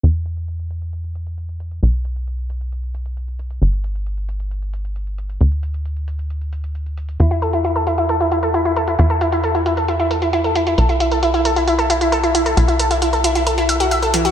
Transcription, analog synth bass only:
\new Staff \with { instrumentName = "Analog synth bass" } { \clef bass \time 4/4 \key e \minor \tempo 4 = 134 e,1 | b,,1 | g,,1 | d,1 |
e,1 | e,1 | b,,1 | b,,1 | }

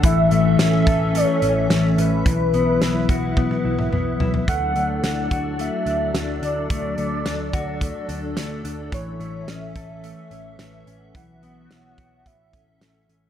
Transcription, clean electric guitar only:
\new Staff \with { instrumentName = "Clean electric guitar" } { \time 4/4 \key a \mixolydian \tempo 4 = 108 e8 a8 cis'8 a'8 a8 cis'8 a8 cis'8 | e8 b8 e'8 fis'8 b8 e'8 b8 e'8 | a8 a8 d'8 fis'8 a8 d'8 a8 d'8 | a8 a8 d'8 fis'8 a8 d'8 a8 d'8 |
e8 a8 cis'8 a'8 a8 cis'8 a8 cis'8 | e8 b8 e'8 fis'8 e8 cis'8 a8 cis'8 | }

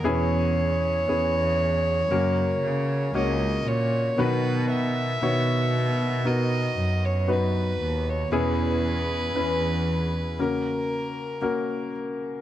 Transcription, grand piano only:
<<
  \new Staff \with { instrumentName = "Grand piano" } { \time 4/4 \key b \major \tempo 4 = 58 <b cis' e' gis'>4 <b cis' e' gis'>4 <ais cis' fis' ais'>4 <ais cis' fis' cis''>4 | <dis b fis' b'>4 <dis b fis' cis''>4 <b dis' fis' ais'>4 <b dis' fis' b'>4 | <b cis' e' gis'>4 <b cis' e' b'>4 <ais cis' fis' ais'>4 <ais cis' fis' ais'>4 | }
  \new Staff \with { instrumentName = "Grand piano" } { \clef bass \time 4/4 \key b \major b,4. r8 cis4. r8 | <b, fis>4. r2 r8 | b,4. r8 cis4. r8 | }
>>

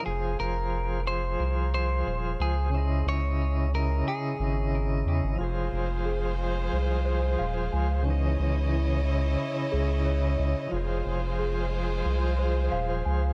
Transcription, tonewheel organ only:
\new Staff \with { instrumentName = "Tonewheel organ" } { \time 4/4 \key f \minor \tempo 4 = 90 <f f' aes' c''>4. <f f' aes' c''>2~ <f f' aes' c''>8 | <des des' fes' ees''>4. <des des' fes' ees''>4 <des des' fes' ees''>4. | <f f' aes' c''>4. <f f' aes' c''>2~ <f f' aes' c''>8 | <des fes des' ees''>4. <des des' fes' ees''>2~ <des des' fes' ees''>8 |
<f f' aes' c''>4. <f f' aes' c''>2~ <f f' aes' c''>8 | }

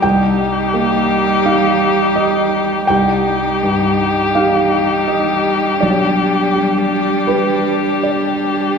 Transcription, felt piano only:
\new Staff \with { instrumentName = "Felt piano" } { \time 4/4 \key c \minor \tempo 4 = 82 << { g''2 f''4 ees''4 | g''2 f''4 ees''4 | d''2 b'4 d''4 | } \\ { c,4 bes4 <ees' g'>2 | c,4 g,4 <ees' g'>2 | b,,4 g4 <d' g'>2 | } >> }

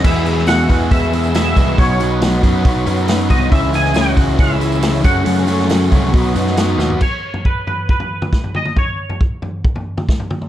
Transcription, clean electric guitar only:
\new Staff \with { instrumentName = "Clean electric guitar" } { \time 4/4 \key b \mixolydian \tempo 4 = 138 e''4 fis''4 e''4 e''4 | cis''4 r2 r8 dis''8 | e''8 gis''8 fis''4 e''4. fis''8~ | fis''4 r2. |
cis''4 b'8 b'8 b'4. dis''8 | cis''4 r2. | }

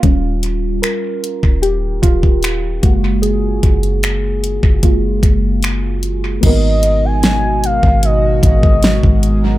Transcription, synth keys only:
\new Staff \with { instrumentName = "Synth keys" } { \time 4/4 \key gis \dorian \tempo 4 = 75 << { r4 ais'4 g'8 eis'4 fis'8 | gis'2. r4 | <ais b dis' fis' ais'>1 | } \\ { <g cis' eis'>8 r2. <gis ais eis'>8~ | <gis ais eis'>4 r4 <gis ais eis'>8 r4. | r1 | } >> }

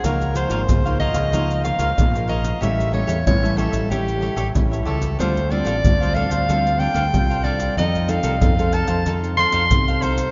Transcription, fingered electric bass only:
\new Staff \with { instrumentName = "Fingered electric bass" } { \clef bass \time 4/4 \key f \major \tempo 4 = 93 des,8. aes,,16 des,8. des,4 des,16 bes,,4 | a,,8. e,16 a,,8. a,,4 a,,16 a,,8 cis,8 | d,8. a,,16 d,8. d,4 d,16 c,4 | f,8. c,16 f,8. f,4 f,16 c,4 | }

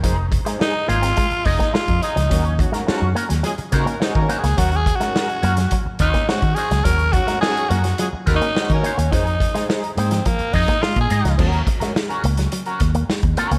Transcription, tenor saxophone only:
\new Staff \with { instrumentName = "Tenor saxophone" } { \time 4/4 \key ees \dorian \tempo 4 = 106 r4 ees'8 f'4 ees'8 f'8 ees'8~ | ees'8 r2 r8 \tuplet 3/2 { ees'8 des'8 aes'8 } | \tuplet 3/2 { ges'8 aes'8 ges'8~ } ges'4 r8 ees'8 ges'8 aes'8 | bes'8 ges'8 aes'8 ges'8~ \tuplet 3/2 { ges'8 r8 ees'8~ ees'8 des'4 } |
ees'4 r8 c'8 bes8 ees'8 \tuplet 3/2 { f'8 aes'4 } | r1 | }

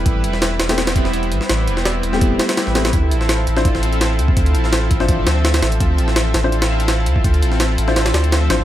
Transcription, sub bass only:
\new Staff \with { instrumentName = "Sub bass" } { \clef bass \time 4/4 \key d \minor \tempo 4 = 167 a,,8 e,,4 e,,2 a,,16 r16 | a,,8 e,,4 e,,4 r8. a,,8. | d,8 a,,4 a,,2 d,16 r16 | d,8 a,,4 a,,4 d,4 a,,8 |
d,8 a,,4 a,,2 d,16 r16 | d,8 a,,4 a,,4 d,4 a,,16 a,,16 | }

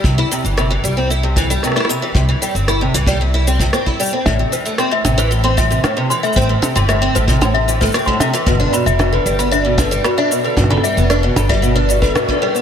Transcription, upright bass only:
\new Staff \with { instrumentName = "Upright bass" } { \clef bass \time 4/4 \key c \major \tempo 4 = 114 c,16 r8 g,,8 r16 c,4~ c,16 r4 r16 | c,16 r8 g,,8 r16 c,4~ c,16 r4 r16 | a,,16 r4 r16 a,,4~ a,,16 r4 r16 | a,,16 r8 g,,8 r16 a,,4~ a,,16 r4 r16 |
g,,16 r8 f,,8 r16 g,,4~ g,,16 r4 r16 | g,,16 r8 f,,8 r16 g,,4~ g,,16 r4 r16 | }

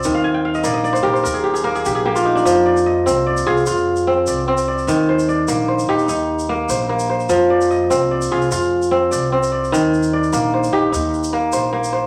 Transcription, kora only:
<<
  \new Staff \with { instrumentName = "Kora" } { \time 12/8 \key ees \major \tempo 4. = 99 << { d''8 r1 r4. | r8 d''8 ees''4 d''8 f'8 f'4. d''4 d''8~ | d''8 c''8 d''4 c''8 ees'8 ees'4. c''4 c''8~ | c''8 d''8 ees''4 d''8 f'8 f'4. d''4 d''8~ |
d''8 r8 d''4 c''8 ees'8 ees'4. c''4 c''8 | } \\ { r16 f''16 aes''16 g''16 f''16 ees''16 d''16 ees''16 d''16 c''16 bes'16 c''16 bes'16 aes'16 g'16 aes'16 bes'16 aes'16 g'16 aes'16 g'16 f'16 ees'16 d'16~ | d'16 r1 r4. r16 | r1. | r1. |
r1. | } >> }
  \new Staff \with { instrumentName = "Kora" } { \time 12/8 \key ees \major ees4 r8 bes4 g'4 r8 bes4 bes4 | f4 r8 c'4 aes'4 r8 c'4 c'4 | ees4 r8 bes4 g'4 r8 bes4 bes4 | f4 r8 c'4 aes'4 r8 c'4 c'4 |
ees4 r8 bes4 g'4 r8 bes4 bes4 | }
>>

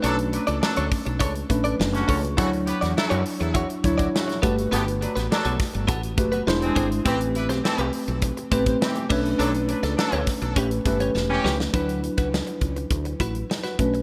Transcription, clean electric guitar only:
\new Staff \with { instrumentName = "Clean electric guitar" } { \time 4/4 \key d \major \tempo 4 = 103 <d' a' cis''>16 r8 <d' a' d''>16 r16 <d' a' cis''>16 r8 <d' a' cis''>16 r8 <d' a' d''>16 r8 <d' a' cis''>16 r16 | <e' fis' cis''>16 r8 <e' fis' d''>16 r16 <e' fis' cis''>16 r8 <e' fis' cis''>16 r8 <e' fis' d''>16 r8 <b fis' a'>16 r16 | <b fis' a'>16 r8 <b fis' b'>16 r16 <b fis' a'>16 r8 <b fis' a'>16 r8 <b fis' b'>16 r8 <d' gis' bis'>16 r16 | <c' g' b'>16 r8 <c' g' c''>16 r16 <c' g' b'>16 r4 <c' g' b'>16 <c' g' c''>16 r8 <d' a' cis''>16 r16 |
<d' a' cis''>16 r8 <d' a' d''>16 r16 <d' a' cis''>16 r8 <cis' g' b'>16 r8 <cis' g' cis''>16 r8 <cis' g' b'>16 r16 | <e' fis' b'>8 r16 <e' fis' b'>16 r4. <e' fis' b'>16 r8 <e' fis' b'>16 r8 | }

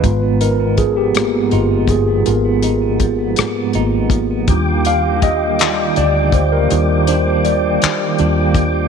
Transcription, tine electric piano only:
\new Staff \with { instrumentName = "Tine electric piano" } { \time 6/8 \key ees \major \tempo 4. = 54 << { ces''8 bes'8 aes'16 g'8. f'8 aes'8 | r2. | r8 f''8 ees''4 d''8 c''16 bes'16~ | bes'8 c''8 d''8 r4. | } \\ { <aes ces' f'>4. <bes ces' f'>8 r4 | <ces' f' bes'>8 r4. <bes ces' f'>8 r8 | <g d' f'>8 r4 <g f' d''>8 r4 | <g d' f'>8 r4. <g d' f'>8 r8 | } >> }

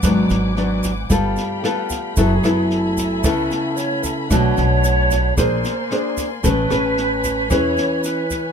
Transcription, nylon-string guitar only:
\new Staff \with { instrumentName = "Nylon-string guitar" } { \time 4/4 \key a \major \tempo 4 = 112 << { <fis b d'>4 <fis b d'>8 r8 <b f' a'>4 <b f' a'>4 | <b e' a'>8 <b e' a'>4. <b e' a'>2 | <a d' fis'>2 <d' aes' c''>8 r8 <d' aes' c''>8 r8 | <cis' gis' b'>8 <cis' gis' b'>4. <cis' gis' b'>4. r8 | } \\ { gis,2 g2 | fis2 cis2 | b,2 bes2 | a2 e2 | } >> }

